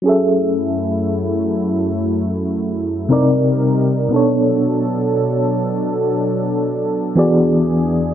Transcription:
0, 0, Header, 1, 3, 480
1, 0, Start_track
1, 0, Key_signature, 3, "minor"
1, 0, Tempo, 1016949
1, 23, Time_signature, 4, 2, 24, 8
1, 3843, End_track
2, 0, Start_track
2, 0, Title_t, "FM electric piano"
2, 0, Program_c, 0, 5
2, 9, Note_on_c, 0, 54, 62
2, 17, Note_on_c, 0, 61, 56
2, 27, Note_on_c, 0, 68, 59
2, 35, Note_on_c, 0, 69, 56
2, 43, Note_on_c, 0, 76, 66
2, 111, Control_c, 0, 64, 127
2, 1437, Note_off_c, 0, 54, 0
2, 1441, Note_off_c, 0, 61, 0
2, 1446, Note_off_c, 0, 68, 0
2, 1450, Note_off_c, 0, 69, 0
2, 1454, Note_off_c, 0, 76, 0
2, 1457, Note_on_c, 0, 48, 68
2, 1462, Note_on_c, 0, 60, 63
2, 1466, Note_on_c, 0, 63, 64
2, 1470, Control_c, 0, 64, 0
2, 1470, Note_on_c, 0, 70, 63
2, 1474, Note_on_c, 0, 74, 77
2, 1544, Control_c, 0, 64, 127
2, 1929, Note_on_c, 0, 47, 61
2, 1938, Note_on_c, 0, 59, 59
2, 1940, Note_off_c, 0, 48, 0
2, 1942, Note_off_c, 0, 60, 0
2, 1944, Note_off_c, 0, 63, 0
2, 1946, Note_off_c, 0, 70, 0
2, 1947, Note_on_c, 0, 62, 61
2, 1949, Note_off_c, 0, 74, 0
2, 1949, Control_c, 0, 64, 0
2, 1955, Note_on_c, 0, 69, 58
2, 1964, Note_on_c, 0, 73, 71
2, 2036, Control_c, 0, 64, 127
2, 3357, Note_off_c, 0, 47, 0
2, 3362, Note_off_c, 0, 59, 0
2, 3366, Note_off_c, 0, 62, 0
2, 3370, Note_off_c, 0, 69, 0
2, 3374, Note_off_c, 0, 73, 0
2, 3377, Note_on_c, 0, 52, 72
2, 3382, Note_on_c, 0, 59, 64
2, 3385, Note_on_c, 0, 66, 64
2, 3388, Control_c, 0, 64, 0
2, 3389, Note_on_c, 0, 68, 64
2, 3393, Note_on_c, 0, 74, 81
2, 3460, Control_c, 0, 64, 127
2, 3843, Note_off_c, 0, 52, 0
2, 3843, Note_off_c, 0, 59, 0
2, 3843, Note_off_c, 0, 66, 0
2, 3843, Note_off_c, 0, 68, 0
2, 3843, Note_off_c, 0, 74, 0
2, 3843, End_track
3, 0, Start_track
3, 0, Title_t, "Analog synth pad"
3, 0, Program_c, 1, 89
3, 23, Note_on_c, 1, 54, 65
3, 23, Note_on_c, 1, 57, 75
3, 24, Note_on_c, 1, 42, 68
3, 24, Note_on_c, 1, 64, 65
3, 1448, Note_off_c, 1, 54, 0
3, 1449, Note_off_c, 1, 42, 0
3, 1449, Note_off_c, 1, 57, 0
3, 1449, Note_off_c, 1, 64, 0
3, 1458, Note_on_c, 1, 55, 65
3, 1459, Note_on_c, 1, 63, 68
3, 1460, Note_on_c, 1, 48, 76
3, 1460, Note_on_c, 1, 70, 81
3, 1936, Note_off_c, 1, 55, 0
3, 1936, Note_off_c, 1, 63, 0
3, 1936, Note_off_c, 1, 70, 0
3, 1937, Note_off_c, 1, 48, 0
3, 1942, Note_on_c, 1, 69, 77
3, 1943, Note_on_c, 1, 47, 69
3, 1943, Note_on_c, 1, 54, 65
3, 1943, Note_on_c, 1, 62, 66
3, 3368, Note_off_c, 1, 47, 0
3, 3368, Note_off_c, 1, 54, 0
3, 3368, Note_off_c, 1, 69, 0
3, 3382, Note_on_c, 1, 40, 75
3, 3382, Note_on_c, 1, 52, 69
3, 3382, Note_on_c, 1, 68, 87
3, 3843, Note_off_c, 1, 40, 0
3, 3843, Note_off_c, 1, 52, 0
3, 3843, Note_off_c, 1, 62, 0
3, 3843, Note_off_c, 1, 68, 0
3, 3843, End_track
0, 0, End_of_file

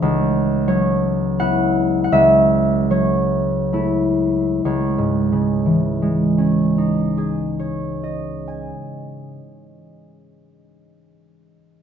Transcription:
0, 0, Header, 1, 2, 480
1, 0, Start_track
1, 0, Key_signature, 4, "minor"
1, 0, Tempo, 664452
1, 11, Time_signature, 3, 2, 24, 8
1, 491, Tempo, 721154
1, 1451, Tempo, 775194
1, 1931, Tempo, 834492
1, 2411, Tempo, 927357
1, 2891, Tempo, 827586
1, 7047, End_track
2, 0, Start_track
2, 0, Title_t, "Harp"
2, 0, Program_c, 0, 46
2, 0, Note_on_c, 0, 61, 41
2, 0, Note_on_c, 0, 63, 44
2, 0, Note_on_c, 0, 73, 57
2, 0, Note_on_c, 0, 76, 69
2, 16, Note_on_c, 0, 37, 60
2, 479, Note_off_c, 0, 73, 0
2, 487, Note_on_c, 0, 54, 43
2, 489, Note_on_c, 0, 73, 72
2, 892, Note_off_c, 0, 61, 0
2, 967, Note_on_c, 0, 59, 44
2, 968, Note_on_c, 0, 78, 91
2, 972, Note_on_c, 0, 64, 50
2, 1350, Note_off_c, 0, 76, 0
2, 1389, Note_off_c, 0, 78, 0
2, 1397, Note_on_c, 0, 78, 66
2, 1444, Note_off_c, 0, 37, 0
2, 1451, Note_on_c, 0, 37, 56
2, 1452, Note_on_c, 0, 76, 89
2, 1467, Note_off_c, 0, 59, 0
2, 1475, Note_off_c, 0, 63, 0
2, 1485, Note_off_c, 0, 78, 0
2, 1928, Note_off_c, 0, 73, 0
2, 1930, Note_off_c, 0, 54, 0
2, 1935, Note_on_c, 0, 54, 39
2, 1937, Note_on_c, 0, 73, 62
2, 2406, Note_off_c, 0, 64, 0
2, 2409, Note_on_c, 0, 57, 33
2, 2413, Note_on_c, 0, 64, 42
2, 2880, Note_off_c, 0, 73, 0
2, 2881, Note_off_c, 0, 37, 0
2, 2886, Note_on_c, 0, 37, 41
2, 2887, Note_on_c, 0, 73, 46
2, 2910, Note_off_c, 0, 57, 0
2, 2914, Note_off_c, 0, 54, 0
2, 3078, Note_on_c, 0, 44, 44
2, 3277, Note_on_c, 0, 49, 40
2, 3469, Note_on_c, 0, 52, 35
2, 3681, Note_on_c, 0, 56, 36
2, 3683, Note_off_c, 0, 76, 0
2, 3889, Note_on_c, 0, 61, 38
2, 4121, Note_on_c, 0, 63, 37
2, 4350, Note_on_c, 0, 68, 34
2, 4586, Note_off_c, 0, 73, 0
2, 4593, Note_on_c, 0, 73, 38
2, 4617, Note_off_c, 0, 64, 0
2, 4848, Note_on_c, 0, 75, 30
2, 5105, Note_on_c, 0, 80, 32
2, 5229, Note_off_c, 0, 37, 0
2, 5420, Note_off_c, 0, 44, 0
2, 5619, Note_off_c, 0, 49, 0
2, 5811, Note_off_c, 0, 52, 0
2, 6023, Note_off_c, 0, 56, 0
2, 6232, Note_off_c, 0, 61, 0
2, 6463, Note_off_c, 0, 63, 0
2, 6626, Note_off_c, 0, 68, 0
2, 6627, Note_off_c, 0, 73, 0
2, 6630, Note_off_c, 0, 80, 0
2, 6631, Note_off_c, 0, 75, 0
2, 7047, End_track
0, 0, End_of_file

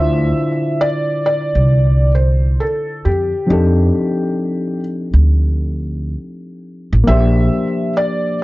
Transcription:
0, 0, Header, 1, 4, 480
1, 0, Start_track
1, 0, Key_signature, -1, "minor"
1, 0, Tempo, 895522
1, 1871, Time_signature, 4, 2, 24, 8
1, 4523, End_track
2, 0, Start_track
2, 0, Title_t, "Felt piano"
2, 0, Program_c, 0, 0
2, 0, Note_on_c, 0, 76, 104
2, 434, Note_on_c, 0, 74, 98
2, 448, Note_off_c, 0, 76, 0
2, 667, Note_off_c, 0, 74, 0
2, 675, Note_on_c, 0, 74, 97
2, 1131, Note_off_c, 0, 74, 0
2, 1152, Note_on_c, 0, 72, 78
2, 1395, Note_on_c, 0, 69, 81
2, 1398, Note_off_c, 0, 72, 0
2, 1635, Note_on_c, 0, 67, 76
2, 1640, Note_off_c, 0, 69, 0
2, 2571, Note_off_c, 0, 67, 0
2, 3792, Note_on_c, 0, 76, 101
2, 4250, Note_off_c, 0, 76, 0
2, 4272, Note_on_c, 0, 74, 95
2, 4494, Note_off_c, 0, 74, 0
2, 4523, End_track
3, 0, Start_track
3, 0, Title_t, "Reed electric piano"
3, 0, Program_c, 1, 4
3, 0, Note_on_c, 1, 50, 64
3, 0, Note_on_c, 1, 62, 57
3, 0, Note_on_c, 1, 64, 56
3, 0, Note_on_c, 1, 65, 61
3, 0, Note_on_c, 1, 72, 69
3, 38, Control_c, 1, 64, 127
3, 1843, Note_off_c, 1, 50, 0
3, 1846, Note_off_c, 1, 62, 0
3, 1852, Note_off_c, 1, 64, 0
3, 1856, Note_off_c, 1, 65, 0
3, 1858, Note_on_c, 1, 53, 63
3, 1861, Note_off_c, 1, 72, 0
3, 1864, Note_on_c, 1, 60, 58
3, 1872, Note_on_c, 1, 62, 58
3, 1879, Control_c, 1, 64, 0
3, 1879, Note_on_c, 1, 63, 60
3, 1886, Note_on_c, 1, 67, 58
3, 1892, Note_on_c, 1, 69, 66
3, 1968, Control_c, 1, 64, 127
3, 3763, Note_off_c, 1, 53, 0
3, 3766, Note_off_c, 1, 60, 0
3, 3770, Note_off_c, 1, 62, 0
3, 3773, Note_off_c, 1, 63, 0
3, 3773, Note_on_c, 1, 58, 68
3, 3777, Note_off_c, 1, 67, 0
3, 3780, Note_off_c, 1, 69, 0
3, 3785, Note_on_c, 1, 53, 56
3, 3793, Note_on_c, 1, 62, 59
3, 3797, Control_c, 1, 64, 0
3, 3802, Note_on_c, 1, 67, 60
3, 3812, Note_on_c, 1, 72, 70
3, 3890, Control_c, 1, 64, 127
3, 4523, Note_off_c, 1, 53, 0
3, 4523, Note_off_c, 1, 58, 0
3, 4523, Note_off_c, 1, 62, 0
3, 4523, Note_off_c, 1, 67, 0
3, 4523, Note_off_c, 1, 72, 0
3, 4523, End_track
4, 0, Start_track
4, 0, Title_t, "Upright bass"
4, 0, Program_c, 2, 32
4, 0, Note_on_c, 2, 38, 96
4, 166, Note_off_c, 2, 38, 0
4, 831, Note_on_c, 2, 36, 78
4, 1371, Note_off_c, 2, 36, 0
4, 1637, Note_on_c, 2, 41, 75
4, 1775, Note_off_c, 2, 41, 0
4, 1877, Note_on_c, 2, 41, 90
4, 2089, Note_off_c, 2, 41, 0
4, 2752, Note_on_c, 2, 38, 85
4, 3291, Note_off_c, 2, 38, 0
4, 3712, Note_on_c, 2, 33, 96
4, 3784, Note_off_c, 2, 33, 0
4, 3795, Note_on_c, 2, 34, 95
4, 4008, Note_off_c, 2, 34, 0
4, 4523, End_track
0, 0, End_of_file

